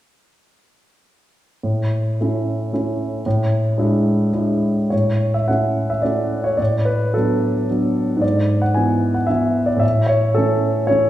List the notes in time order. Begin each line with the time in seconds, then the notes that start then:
1.63 A2
2.21 A3 C#4 E4
2.73 A3 C#4 E4
3.26 A2
3.78 G#3 D4 E4
4.33 G#3 D4 E4
4.90 A2 C#5
5.34 E5
5.48 A3 C#4 E4 F#5
5.90 E5
6.02 A3 C#4 E4 D5
6.44 C#5
6.57 A2 D5
6.85 B4
7.14 F#3 B3 D4 A4
7.70 F#3 B3 D4
8.17 G#2
8.21 D5
8.62 F#5
8.74 E3 B3 E4 G#5
9.14 F#5
9.27 E3 B3 E4 E5
9.66 D5
9.77 A2 E5
10.06 C#5
10.35 E3 A3 C#4 A4
10.87 E3 A3 C#4 C#5